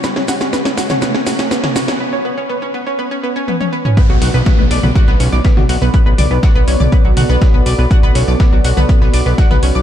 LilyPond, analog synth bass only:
\new Staff \with { instrumentName = "Analog synth bass" } { \clef bass \time 4/4 \key b \minor \tempo 4 = 122 r1 | r1 | r16 b,,16 b,,16 b,,16 r16 b,,16 b,,16 b,,16 r16 b,,16 b,,16 b,,16 r16 b,,16 b,,16 b,,16 | r16 b,,16 b,,16 b,,16 r16 b,,16 b,,16 b,,16 r16 b,,16 b,,16 b,,16 r16 b,,16 b,,16 b,,16 |
r16 b,,16 b,,16 b,,16 r16 b,,16 b,,16 b,,16 r16 b,,16 b,,16 b,,16 r16 b,,16 b,,16 b,,16 | }